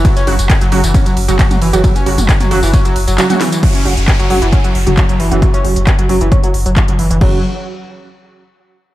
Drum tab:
CC |----------------|----------------|x---------------|----------------|
RD |xxxxxxxxxxxxxxxx|xxxxxxxxxxxxxxxx|----------------|----------------|
HH |xxoxxxoxxxoxxxox|xxoxxxooxxoxxxox|xxoxxxoxxxoxxxox|xxoxxxoxxxoxxxox|
TB |xx-xxx-xxx-xxx-x|xx-xxx-xxx-xxx-x|----------------|----------------|
CP |----x-------x---|----x-------x---|----x-------x---|----x-------x---|
SD |----------------|--------------o-|----------------|----------------|
T2 |-------------o--|---o-o-------o--|----------------|----------------|
BD |o---o---o---o---|o---o---o-------|o---o---o---o---|o---o---o---o---|

CC |x---------------|
RD |----------------|
HH |----------------|
TB |----------------|
CP |----------------|
SD |----------------|
T2 |----------------|
BD |o---------------|